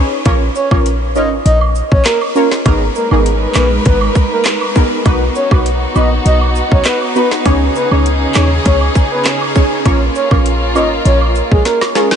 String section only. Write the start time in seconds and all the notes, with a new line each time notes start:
2.65 G#3 D#4 A#4 B4
5.06 B3 D#4 F#4
7.45 C#3 C#4 G#4
9.86 A#3 F4